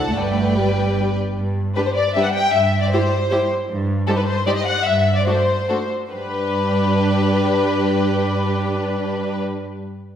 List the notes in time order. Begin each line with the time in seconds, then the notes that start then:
Already playing: D2 A4 F#5 A5
0.08 A3
0.17 G1 G2 A3 B4 D5 G5
0.57 G3
1.37 G2
1.75 G3 D4 G4 B4
1.86 C5
1.94 D5
2.14 G3 D4 G4 B4 E5
2.23 F#5
2.33 G5
2.52 G2 E5
2.81 D5
2.91 G3 E4 G4 C5
3.31 G3 E4 G4 C5
3.69 G2
4.07 G3 D#4 G4 A4 C5
4.17 B4
4.26 C5
4.46 G3 D#4 G4 C5 D5
4.57 D#5
4.66 F#5
4.86 G2 E5
5.17 D5
5.27 A3 D4 F#4 A4 C5
5.69 A3 D4 F#4 A4
6.11 G2 G3 D4 G4 B4